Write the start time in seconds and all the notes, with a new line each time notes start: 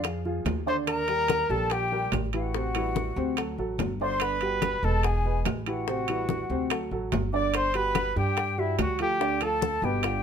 Already playing: F2 F4 F5
0.04 F3 F4 G#4, high bongo, high conga, high timbale, claves
0.25 F3 F4 G#4, high conga
0.45 D#2, high bongo, low bongo, high conga, high timbale, low timbale
0.66 D3 D4 C5 D5 C6, high conga
0.87 A#4 A#5, high bongo, high conga, high timbale, claves
1.08 G3 G4 A#4, high bongo, high conga, high timbale
1.28 high bongo, high conga, high timbale, low timbale, claves
1.50 A#1 G3 G4 A4 A#4 A5, high bongo, high conga
1.70 G4 G5, high bongo, high conga, high timbale
1.92 G3 G4 A#4, high conga
2.12 A1, high bongo, low bongo, high conga, high timbale, low timbale, claves
2.33 E3 E4 F#4 G4 F#5, high conga, high timbale
2.55 C3 C4 C5, high bongo, high conga
2.75 E3 G3 E4, high bongo, high conga, high timbale, claves
2.95 high bongo, high conga, low timbale
3.16 D2 C3 C4 C5, high bongo
3.37 F#3 F#4 A4, high bongo, high conga, high timbale, claves
3.58 A1 F#3 F#4 A4, high conga
3.78 G1, high bongo, low bongo, high conga, high timbale, low timbale
4.00 D3 D4 C5 D5 C6, high conga
4.20 B4 B5, high bongo, high conga, high timbale, claves
4.41 G3 F#4 G4, high bongo, high conga, high timbale
4.62 high bongo, high conga, high timbale, low timbale, claves
4.83 E1 G#3 G#4 A4 B4 A5, high bongo, high conga
5.03 G#4 G#5, high bongo, high conga, high timbale
5.25 G#3 G#4 B4, high conga
5.45 A1, high bongo, low bongo, high conga, high timbale, low timbale, claves
5.66 E3 E4 F#4 G4 F#5, high conga, high timbale
5.87 C3 C4 C5, high bongo, high conga
6.08 E3 G3 E4, high bongo, high conga, high timbale, claves
6.29 high bongo, high conga, low timbale
6.50 D2 C3 C4 C5, high bongo
6.70 F#3 F#4 A4, high bongo, high conga, high timbale, claves
6.91 A1 F#3 F#4 A4, high conga
7.12 G1, high bongo, low bongo, high conga, high timbale, low timbale
7.33 D3 D4 D5 D6, high conga
7.54 C5 C6, high bongo, high conga, high timbale, claves
7.74 G3 F#4 G4 B4 B5, high bongo, high conga, high timbale
7.95 high bongo, high conga, high timbale, low timbale, claves
8.16 G2 G3 D4 G4 G5, high bongo, high conga
8.37 high bongo, high conga, high timbale
8.58 G3 E4 F#4 G4 E5, high conga
8.79 D2 F#4 F#5, high bongo, low bongo, high conga, high timbale, low timbale, claves
8.99 F3 F4 G4 A4 G5, high conga, high timbale
9.20 D3 D4 D5, high bongo, high conga
9.41 F3 F4 A4 A5, high bongo, high conga, high timbale, claves
9.62 high bongo, high conga, low timbale
9.82 G1 B2 B3 G4 B4 G5, high bongo
10.03 D3 D4 F4, high bongo, high conga, high timbale, claves